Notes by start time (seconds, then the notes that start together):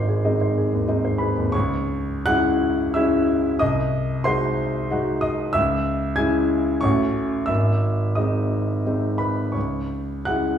Already playing: G#1 C5 D#5
0.09 G#4
0.25 G#3 C4 D#4 D#5
0.41 C5
0.58 G#4
0.73 D#2
0.88 G#3 C4 D#4 D#5
1.05 C5
1.18 G#4 B4 B5
1.37 D#2
1.52 C#2 C#5 C#6
2.26 G#3 C#4 E4 F#5 F#6
2.94 G#3 C#4 E4 E5 E6
3.59 C2 D#5 D#6
4.24 G#3 D#4 F#4 C5 C6
4.91 G#3 D#4 F#4
5.21 D#5 D#6
5.53 C#2 E5 E6
6.16 G#3 C#4 E4 G#5 G#6
6.81 A1 A3 C#4 C#5 C#6
6.85 F#4
7.46 G#1 E5 E6
8.15 G#3 C4 D#4 D#5 D#6
8.87 G#3 C4 D#4
9.18 B4 B5
9.52 C#2 C#5 C#6
10.25 G#3 C#4 E4 F#5 F#6